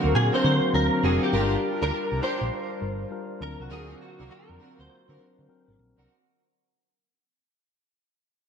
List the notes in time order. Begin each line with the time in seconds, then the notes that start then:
Already playing: D3 F#3 A#3 C4 D4 F#4 A#4 F5
0.04 D2
0.15 A#2 G#4
0.33 C4 D4 F#4 A#4 C5
0.43 D3 F#3 C4 D4 A#4 C5
0.73 D2 F#3 C4 D4 A#4
1.03 F1 C4 D4 F#4 G#4 A#4
1.23 G4
1.32 G1 G3 D4 F4 G4 A#4
1.81 D2 D4 F4 G4 A#4
2.12 C2
2.22 D4 F4 G4 A#4 C5
2.41 A#1
2.81 G1 G3 D4 F4 A#4
3.11 G3 D4 F4 A#4
3.40 D2 D3 F#3 A#3 C4 D4 F4 F#4 A#4
3.60 C2 F#4
3.70 D2 C4 D4 F#4 G#4 A#4
4.01 F#4
4.19 C2 C4 D4 F#4 A#4
4.30 A#4, muted picked electric bass stroke
4.50 F2
4.59 C4 D4 F#4 A#4
4.79 D2 C5
5.08 D3 C4 D4 F#4 A#4
5.18 F#3 C4 D4 A#4
5.39 D3
5.48 F#3 C4 D4 A#4
5.68 G#1
5.79 A#1
5.97 C2 C4 D4 F#4 A#4